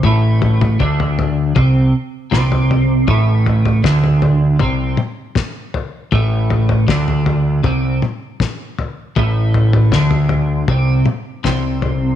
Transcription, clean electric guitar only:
X:1
M:4/4
L:1/8
Q:1/4=79
K:Am
V:1 name="Clean electric guitar" clef=bass
A,,2 D,2 C, z C,2 | A,,2 D,2 C, z3 | A,,2 D,2 C, z3 | A,,2 D,2 C, z C,2 |]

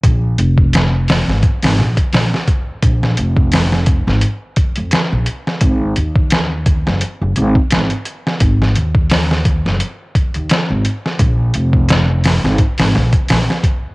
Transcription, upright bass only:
X:1
M:4/4
L:1/16
Q:"Swing 16ths" 1/4=86
K:Abmix
V:1 name="Upright bass" clef=bass
B,,,2 F,,,4- F,,, A,,, z A,,, B,,, z B,,, z3 | B,,,2 F,,,4- F,,, A,,, z3 F,, z B,,, z2 | A,,,2 E,,4- E,, G,,, z G,,, A,,, z A,,, z3 | A,,,2 E,,4- E,, G,,, z3 E,, z A,,, z2 |
B,,,2 F,,,4- F,,, A,,, z A,,, B,,, z B,,, z3 |]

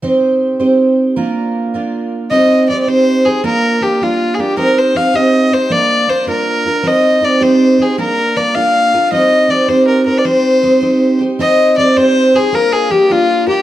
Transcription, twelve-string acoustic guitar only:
X:1
M:6/8
L:1/8
Q:3/8=106
K:Cm
V:1 name="Twelve-string acoustic guitar"
[CEGc]3 [CEGc]3 | [B,DFB]3 [B,DFB]3 | [CEGc]2 [CEGc] [CEGc]2 [EGc] | [B,DFB]2 [B,DFB] [B,DFB]2 [DFB] |
[CEGc]2 [CEGc] [CEGc]2 [EGc] | [B,DFB]2 [B,DFB] [B,DFB]2 [DFB] | [CEGc]2 [CEGc] [CEGc]2 [EGc] | [B,DFB]2 [B,DFB] [B,DFB]2 [DFB] |
[CEGc]2 [CEGc] [CEGc]2 [EGc] | [CEGc]2 [CEGc] [CEGc]2 [EGc] | [CEGc]2 [CEGc] [CEGc]2 [Gc] | [B,DFB]2 [B,DFB] [B,DFB]2 [DFB] |]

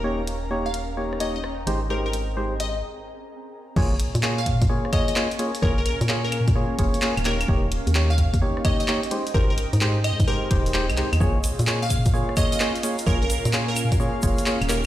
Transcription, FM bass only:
X:1
M:4/4
L:1/16
Q:"Swing 16ths" 1/4=129
K:Bbdor
V:1 name="FM bass" clef=bass
E,,,12- E,,,2 A,,,2- | A,,,8 z8 | B,,,3 B,,4 B,, z8 | B,,,3 B,,4 B,, z2 F,,, z2 E,,,3 |
E,,,3 E,,4 E,, z8 | A,,,3 A,,4 A,, z2 E,,,3 C,, z E,, | B,,,3 B,,4 B,, z8 | B,,,3 B,,4 B,, z2 F,,, z2 E,,,3 |]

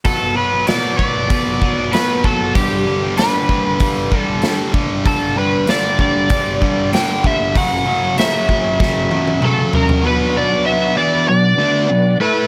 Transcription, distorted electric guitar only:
X:1
M:4/4
L:1/8
Q:1/4=96
K:Bm
V:1 name="Distorted electric guitar" clef=bass
[B,,F,B,] [B,,F,B,] [B,,F,B,] [B,,F,B,] [B,,F,B,] [B,,F,B,] [B,,F,B,] [B,,F,B,] | [G,,D,G,] [G,,D,G,] [G,,D,G,] [G,,D,G,] [G,,D,G,] [G,,D,G,] [G,,D,G,] [G,,D,G,] | [G,,D,G,] [G,,D,G,] [G,,D,G,] [G,,D,G,] [G,,D,G,] [G,,D,G,] [G,,D,G,] [G,,D,G,] | [F,,C,F,] [F,,C,F,] [F,,C,F,] [F,,C,F,] [F,,C,F,] [F,,C,F,] [F,,C,F,] [F,,C,F,] |
[B,,F,B,]3 [E,B,E] [B,,F,] [D,A,D] [B,,F,] [A,EA] |]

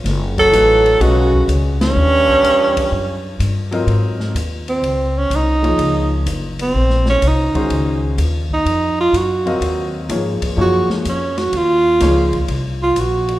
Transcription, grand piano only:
X:1
M:4/4
L:1/8
Q:"Swing" 1/4=125
K:Ebm
V:1 name="Grand piano"
z2 [_F,=A,E=Ac]2 [_A,DGce]3 z | z6 z [^F,=C=FBe]- | [K:Abmix] [^F,C=FBe]2 z4 z [=F,B,EAd]- | [F,B,EAd]2 z4 z [E,A,DGc]- |
[E,A,DGc]2 z4 z [G,CBef]- | [G,CBef]2 [F,B,EAd]2 [F,B,EAd]3 z | z2 [F,B,EAd] z4 z |]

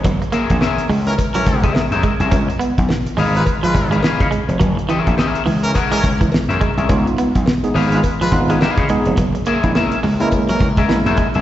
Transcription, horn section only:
X:1
M:4/4
L:1/16
Q:"Swing 16ths" 1/4=105
K:Gb
V:1 name="Horn section"
z6 z [_F,DB] z [F,DB]3 z4 | z6 z [A,Fc] z [A,Fc]3 z4 | z6 z [_F,DB] z [F,DB]2 z4 z | z6 z [A,Fc] z [A,Fc]2 z4 z |
z6 z [_F,DB] z [F,DB]2 z4 z |]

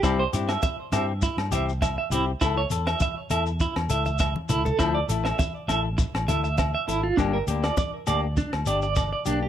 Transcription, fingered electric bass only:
X:1
M:4/4
L:1/16
Q:"Swing 16ths" 1/4=101
K:Cmix
V:1 name="Fingered electric bass" clef=bass
C,,2 G,,2 z2 G,,3 G,, C,,4 C,,2 | ^C,,2 E,,2 z2 E,,3 E,, C,,4 C,,2 | D,,2 A,,,2 z2 A,,,3 A,,, D,,4 ^G,,,2 | G,,,2 D,,2 z2 D,,3 D,, G,,,4 =B,,,2 |]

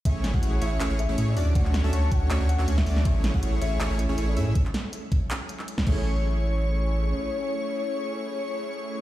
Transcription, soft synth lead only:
X:1
M:4/4
L:1/16
Q:1/4=160
K:A
V:1 name="Soft synth lead"
e2 z f3 e2 z2 e3 d2 z | f2 z a3 f2 z2 f2 z e2 z | e3 f2 z e2 z2 e3 c2 z | z12 z2 c2- |
c16- | c16 |]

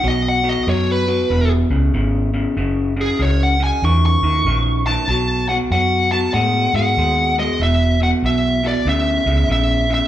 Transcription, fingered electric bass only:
X:1
M:4/4
L:1/8
Q:"Swing" 1/4=95
K:Bmix
V:1 name="Fingered electric bass" clef=bass
B,,,2 F,,2 E,,, C,, G,,,2 | F,,,2 C,,2 E,, D,, ^A,,,2 | B,,,2 F,,2 A,, G,, D,,2 | E,,,2 B,,,2 =D,, C,, ^A,,,2 |]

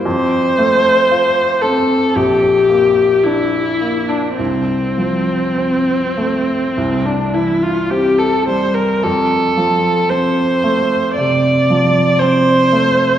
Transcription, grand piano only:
X:1
M:4/4
L:1/8
Q:1/4=55
K:F
V:1 name="Grand piano"
F,, A, F C B,,, B, D B, | C,, F, C A, C,, E, C G, | F,, F, C A, C, F, C A, |]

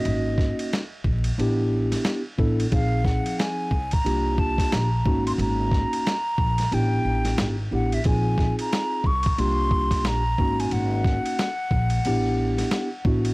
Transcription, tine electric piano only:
X:1
M:4/4
L:1/8
Q:"Swing 16ths" 1/4=90
K:Abmix
V:1 name="Tine electric piano"
[B,DEG]2 z2 [=B,=D=E=G]2 z [B,DE=A] | [F,CEA]3 z [B,=DF=G]2 z [B,_DE_G]- | [B,DEG]2 z2 [=B,=D=E=G]2 z [B,DEG] | [CEFA]3 z [B,=DF=G]2 z [B,_DE_G]- |
[B,DEG]2 z2 [=B,=D=E=G]2 z [B,DE_G] |]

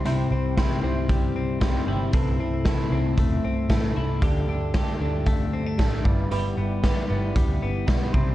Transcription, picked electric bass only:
X:1
M:4/4
L:1/16
Q:1/4=115
K:G
V:1 name="Picked electric bass" clef=bass
C,,2 C,,3 z C,,6 C,,2 G,,,2 | C,,2 C,,3 z C,,2 E,,,2 C,,2 A,,,2 C,,2 | D,,2 D,,3 z D,,6 A,,,2 G,,,2 | G,,,2 G,,,3 z G,,,2 D,,2 G,,,2 B,,,2 C,,2 |]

